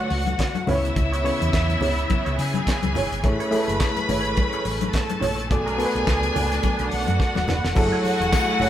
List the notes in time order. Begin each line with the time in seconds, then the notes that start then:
Already playing: D3 A3 D4 F#4 B4 F#5
0.10 C#2, muted clean electric guitar stroke, open hi-hat, muted conga
0.26 muted clean electric guitar stroke, closed hi-hat, high conga
0.39 muted clean electric guitar stroke, kick, snare, clap, closed hi-hat, muted conga
0.55 muted clean electric guitar stroke, closed hi-hat, high conga
0.67 C#2 C#3 E3 B3 E4 G#4 B4 C#5 E5, open hi-hat, muted conga, low conga
0.75 C#5
0.84 muted clean electric guitar stroke, closed hi-hat
0.96 C#2, muted clean electric guitar stroke, kick, closed hi-hat, muted conga, low conga
1.12 B3 E4 G#4 C#5, closed hi-hat
1.23 C#3 B3 E4 G#4 C#5, open hi-hat, muted conga
1.41 E2, muted clean electric guitar stroke, closed hi-hat
1.53 E2, kick, snare, clap, closed hi-hat, muted conga
1.69 muted clean electric guitar stroke, closed hi-hat, high conga
1.81 C#2 B3 E4 G#4 C#5, open hi-hat, muted conga, low conga
1.98 muted clean electric guitar stroke, closed hi-hat
2.08 muted clean electric guitar stroke, kick, closed hi-hat, muted conga, high conga
2.25 C#2 B3 E4 G#4 C#5, closed hi-hat
2.38 C#3 G#4 G#5, open hi-hat, muted conga
2.54 muted clean electric guitar stroke, closed hi-hat, high conga
2.67 muted clean electric guitar stroke, kick, snare, clap, closed hi-hat
2.83 C#2, muted clean electric guitar stroke, closed hi-hat, high conga
2.95 G1 B3 E4 G#4 C#5, open hi-hat, muted conga, low conga
3.12 G#1, muted clean electric guitar stroke, closed hi-hat
3.24 A1 A3 C#4 E4 G#4 B4 C#5 B5, muted clean electric guitar stroke, kick, closed hi-hat, muted conga, low conga
3.40 C#4 E4 G#4 C#5, closed hi-hat
3.51 A3 C#4 E4 G#4 A4 C#5, open hi-hat, muted conga
3.59 B4
3.67 F#1, muted clean electric guitar stroke, closed hi-hat
3.80 kick, snare, clap, closed hi-hat
3.96 muted clean electric guitar stroke, closed hi-hat, high conga
4.09 G#1 C#4 E4 G#4 C#5, open hi-hat, muted conga, low conga
4.25 muted clean electric guitar stroke, closed hi-hat
4.37 muted clean electric guitar stroke, kick, closed hi-hat, muted conga, high conga
4.53 C#4 E4 G#4 C#5, closed hi-hat
4.65 A1, muted clean electric guitar stroke, open hi-hat, muted conga
4.81 muted clean electric guitar stroke, closed hi-hat, high conga
4.93 A4 A5, muted clean electric guitar stroke, kick, snare, clap, closed hi-hat
5.09 muted clean electric guitar stroke, closed hi-hat, high conga
5.20 A#1 C#4 E4 G#4 C#5, open hi-hat, muted conga, low conga
5.37 muted clean electric guitar stroke, closed hi-hat
5.50 B1 B3 D4 F#4 G#4 A4 D5 G#5, muted clean electric guitar stroke, kick, closed hi-hat, muted conga, low conga
5.66 A3 D4 F#4 B4, closed hi-hat
5.78 A3 B3 D4 F#4 A4 A#4 B4, open hi-hat, muted conga
5.86 B4
5.94 B1, muted clean electric guitar stroke, closed hi-hat
6.07 C#2, kick, snare, clap, closed hi-hat, muted conga
6.23 muted clean electric guitar stroke, closed hi-hat, high conga
6.35 C#2 A3 D4 F#4 B4, open hi-hat, low conga
6.51 muted clean electric guitar stroke, snare, closed hi-hat
6.63 muted clean electric guitar stroke, kick, closed hi-hat, muted conga, high conga
6.79 B1 A3 D4 F#4 B4, closed hi-hat
6.91 B1 F#4 F#5, muted clean electric guitar stroke, open hi-hat, muted conga
7.07 F#2, muted clean electric guitar stroke, closed hi-hat, high conga
7.19 muted clean electric guitar stroke, kick, snare, muted conga
7.35 D#1, muted clean electric guitar stroke, snare, high conga
7.47 E1 A3 D4 F#4 B4, snare, muted conga, low conga
7.64 F1, snare
7.75 F#1 F#3 A3 E4 F#4 G#4 A4 F#5 G#5, muted clean electric guitar stroke, kick, crash, muted conga, low conga
7.92 A3 E4 G#4 C#5
8.04 A3 E4 G#4 C#5, open hi-hat, muted conga
8.20 E1, muted clean electric guitar stroke, closed hi-hat
8.32 kick, snare, clap, closed hi-hat, tambourine, muted conga
8.49 muted clean electric guitar stroke
8.60 F#1 A3 E4 G#4 C#5, open hi-hat, muted conga, low conga